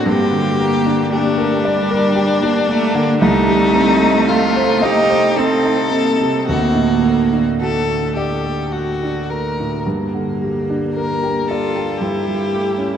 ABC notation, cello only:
X:1
M:3/4
L:1/16
Q:1/4=56
K:Gm
V:1 name="Cello"
B,4 A,2 G,3 B, A, B, | A,6 E2 C2 B,2 | B,4 A,4 z4 | B,6 F2 =E4 |]